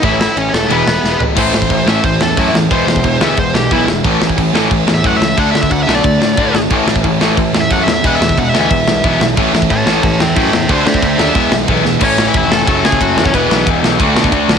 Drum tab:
CC |----------------|x---x---x---x---|x---x---x---x---|x---x---x---x---|
RD |x---x---x-------|----------------|----------------|----------------|
SD |--o---o---o-o---|--o---o---o---o-|--o---o---o---o-|--o---o---o---o-|
FT |--------------o-|----------------|----------------|----------------|
BD |o---------------|o--oo---o---o---|o--oo---o---o---|o--oo---o---o---|

CC |x---x---x---x---|x---x---x---x---|x---x---x---x---|x---x---x---x---|
RD |----------------|----------------|----------------|----------------|
SD |--o---o---o---o-|--o---o---o---o-|--o---o---o---o-|--o---o---o---o-|
FT |----------------|----------------|----------------|----------------|
BD |o--oo---o---o---|o--oo---o---o---|o--oo---o---o---|o--oo---o---o---|

CC |x---x---x---x---|x---------------|----------------|
RD |----------------|----x---x---x---|x---x---x---x---|
SD |--o---o---o---o-|--o---o---o---o-|--o---o---o---o-|
FT |----------------|----------------|----------------|
BD |o--oo---o---o---|o---o---o--oo--o|o---o---o--oo---|